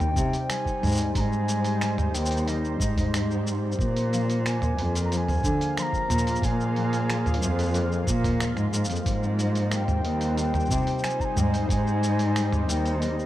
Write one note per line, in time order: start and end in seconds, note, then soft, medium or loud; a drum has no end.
0.00 0.15 G3 medium
0.00 3.79 G3 medium
0.00 0.33 C4 medium
0.00 0.66 D#4 loud
0.00 3.79 D#4 medium
0.00 1.65 G4 medium
0.00 0.52 G5 loud
0.00 mid tom medium
0.00 shaker soft
0.16 0.28 C3 medium
0.16 0.48 G3 medium
0.16 kick loud
0.16 shaker medium
0.33 1.98 C4 medium
0.33 open hi-hat soft
0.33 shaker soft
0.38 5.78 C5 medium
0.50 0.82 G3 medium
0.50 1.16 G#5 loud
0.50 finger snap loud
0.50 open hi-hat medium
0.50 shaker soft
0.66 1.16 D#4 medium
0.66 kick medium
0.66 shaker soft
0.82 1.06 G#2 medium
0.82 1.81 G3 loud
0.82 mid tom medium
0.82 shaker soft
0.86 shaker soft
0.89 shaker soft
0.92 shaker soft
0.94 shaker medium
0.97 open hi-hat soft
0.97 shaker medium
1.00 shaker soft
1.15 2.07 G#2 loud
1.15 2.31 D#4 loud
1.15 1.21 A#5 loud
1.15 kick loud
1.15 open hi-hat medium
1.15 shaker soft
1.20 2.16 G#5 loud
1.32 shaker soft
1.48 open hi-hat soft
1.48 shaker medium
1.65 3.29 G4 medium
1.65 open hi-hat soft
1.65 shaker soft
1.81 2.13 G3 medium
1.81 finger snap loud
1.81 open hi-hat medium
1.81 shaker soft
1.98 3.63 C4 medium
1.98 mid tom medium
1.98 shaker soft
2.14 2.72 D#2 loud
2.14 2.46 G3 medium
2.14 2.50 G5 loud
2.14 open hi-hat medium
2.14 shaker medium
2.26 shaker medium
2.31 2.80 D#4 medium
2.31 open hi-hat soft
2.31 shaker soft
2.37 shaker medium
2.47 3.45 G3 loud
2.47 3.46 D#5 medium
2.47 open hi-hat medium
2.47 shaker soft
2.65 shaker soft
2.80 3.71 G#2 medium
2.80 4.02 D#4 loud
2.80 kick loud
2.80 shaker medium
2.96 kick medium
2.96 mid tom medium
2.96 open hi-hat soft
2.96 shaker soft
3.14 finger snap loud
3.14 open hi-hat medium
3.14 shaker soft
3.30 5.65 G4 medium
3.30 shaker soft
3.46 3.84 G3 medium
3.46 shaker medium
3.63 6.63 C4 medium
3.72 shaker soft
3.79 4.70 A#2 loud
3.79 4.12 F3 medium
3.79 11.17 A#3 medium
3.79 kick loud
3.79 shaker soft
3.96 4.45 D4 medium
3.96 open hi-hat soft
3.96 shaker soft
4.13 5.10 F3 loud
4.13 4.21 F5 medium
4.13 open hi-hat soft
4.13 shaker medium
4.27 11.18 F4 medium
4.27 open hi-hat soft
4.27 shaker soft
4.45 5.60 D4 loud
4.45 5.00 G#5 loud
4.45 finger snap loud
4.45 open hi-hat soft
4.45 shaker soft
4.62 mid tom medium
4.62 shaker soft
4.78 5.36 F2 medium
4.78 open hi-hat medium
4.95 6.59 F4 medium
4.95 open hi-hat soft
4.95 shaker medium
5.05 5.13 A#5 medium
5.11 5.43 F3 medium
5.11 5.18 A#5 loud
5.11 open hi-hat medium
5.11 shaker soft
5.17 5.81 G#5 loud
5.27 6.92 A#3 medium
5.27 mid tom medium
5.27 shaker soft
5.32 shaker soft
5.34 shaker soft
5.37 10.57 F5 loud
5.37 shaker soft
5.39 shaker soft
5.42 5.55 D3 medium
5.42 5.76 F3 medium
5.42 kick loud
5.42 shaker soft
5.45 shaker medium
5.59 6.10 D4 medium
5.59 9.05 G#4 medium
5.59 open hi-hat soft
5.59 shaker soft
5.77 6.75 F3 loud
5.77 5.83 C6 loud
5.77 finger snap loud
5.77 open hi-hat medium
5.77 shaker soft
5.82 6.46 A#5 loud
5.93 kick medium
5.93 shaker soft
6.09 6.33 A#2 medium
6.09 7.25 D4 loud
6.09 mid tom medium
6.09 shaker medium
6.18 shaker medium
6.27 open hi-hat soft
6.27 shaker medium
6.35 shaker soft
6.42 7.34 A#2 loud
6.42 7.75 G#5 medium
6.42 kick loud
6.42 open hi-hat medium
6.42 shaker soft
6.60 8.56 F4 medium
6.60 shaker soft
6.76 7.08 F3 medium
6.76 open hi-hat soft
6.92 8.23 A#3 medium
6.92 open hi-hat soft
6.92 shaker soft
7.09 7.41 F3 medium
7.09 finger snap medium
7.09 open hi-hat medium
7.09 shaker soft
7.26 7.74 D4 medium
7.26 mid tom medium
7.26 shaker soft
7.34 open hi-hat medium
7.42 8.00 F2 loud
7.42 8.88 F3 loud
7.42 shaker medium
7.59 open hi-hat soft
7.59 shaker soft
7.62 shaker soft
7.65 shaker soft
7.67 shaker soft
7.70 shaker soft
7.72 9.62 D4 medium
7.72 open hi-hat soft
7.72 shaker soft
7.75 shaker soft
7.92 shaker soft
8.07 8.57 A#2 loud
8.07 kick loud
8.07 shaker medium
8.24 11.45 A#3 medium
8.24 kick medium
8.24 mid tom medium
8.24 open hi-hat soft
8.24 shaker soft
8.40 9.11 G#3 medium
8.40 finger snap loud
8.40 open hi-hat medium
8.40 shaker soft
8.57 8.69 G#2 loud
8.57 11.09 F4 medium
8.57 finger snap soft
8.57 shaker soft
8.73 8.85 G#2 loud
8.73 10.85 A#4 medium
8.73 shaker medium
8.85 shaker medium
8.89 9.02 F2 medium
8.89 9.11 F3 loud
8.89 open hi-hat soft
8.89 shaker soft
8.96 shaker soft
9.06 9.97 G#2 loud
9.06 9.38 G3 medium
9.06 kick loud
9.06 open hi-hat medium
9.06 shaker soft
9.23 10.87 C4 medium
9.23 shaker soft
9.29 13.26 D#4 medium
9.35 13.26 C5 medium
9.35 open hi-hat soft
9.39 9.71 G3 medium
9.39 9.48 D#5 medium
9.39 shaker medium
9.55 10.05 D#4 medium
9.55 open hi-hat soft
9.55 shaker soft
9.71 10.70 G3 medium
9.71 10.35 G5 loud
9.71 finger snap medium
9.71 open hi-hat medium
9.71 shaker soft
9.88 mid tom medium
9.88 shaker soft
10.05 10.64 D#2 loud
10.05 13.26 G3 medium
10.05 11.20 D#4 loud
10.05 open hi-hat medium
10.21 open hi-hat soft
10.21 shaker soft
10.38 11.05 G5 loud
10.38 open hi-hat medium
10.38 shaker soft
10.54 12.19 G4 medium
10.54 mid tom medium
10.54 shaker soft
10.60 shaker soft
10.65 shaker soft
10.70 10.82 C3 medium
10.70 11.03 G3 medium
10.70 kick loud
10.70 shaker medium
10.82 shaker soft
10.87 12.52 C4 medium
10.87 open hi-hat soft
10.87 shaker soft
10.98 shaker soft
11.04 11.36 G3 medium
11.04 11.22 G#5 loud
11.04 finger snap loud
11.04 open hi-hat medium
11.04 shaker soft
11.10 shaker soft
11.20 11.70 D#4 medium
11.20 11.26 A#5 medium
11.20 kick medium
11.20 shaker soft
11.25 11.39 G#5 loud
11.37 11.61 G#2 medium
11.37 12.35 G3 medium
11.37 11.43 G5 medium
11.37 mid tom medium
11.37 shaker medium
11.42 11.69 G#5 loud
11.54 open hi-hat soft
11.54 shaker soft
11.69 12.61 G#2 loud
11.69 12.85 D#4 loud
11.69 12.65 G#5 loud
11.69 kick loud
11.69 open hi-hat medium
11.69 shaker soft
11.87 shaker soft
12.03 open hi-hat soft
12.03 shaker medium
12.19 13.26 G4 medium
12.19 open hi-hat soft
12.19 shaker soft
12.36 12.68 G3 medium
12.36 finger snap loud
12.36 open hi-hat medium
12.36 shaker soft
12.53 13.26 C4 medium
12.53 mid tom medium
12.53 shaker soft
12.69 13.26 D#2 loud
12.69 13.01 G3 medium
12.69 13.02 G5 loud
12.69 open hi-hat medium
12.69 shaker medium
12.86 13.26 D#4 medium
12.86 open hi-hat soft
12.86 shaker soft
13.00 13.26 G3 loud
13.00 13.26 D#5 medium
13.00 open hi-hat medium
13.00 shaker soft
13.19 shaker soft